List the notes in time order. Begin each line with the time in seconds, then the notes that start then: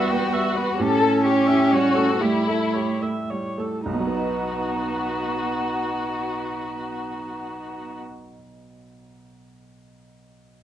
Already playing: E2 G3 B3 E4 F#4 E5
0.11 B3 G5
0.33 G3 E5
0.55 B3 B4
0.77 A2 C#4 G4 A4
1.00 A3 A4
1.24 G4 C#5
1.47 E4 E5
1.71 G3 F#4 C#5
1.96 A3 A4
2.21 G3 A3 E4 G4
2.48 A3 A4
2.74 G4 C#5
3.02 A3 E5
3.30 G3 C#5
3.58 A3 A4
3.86 B1 B3 D#4 F#4
3.93 B2
4.00 F#3
4.07 B3
4.14 D#4
4.21 B4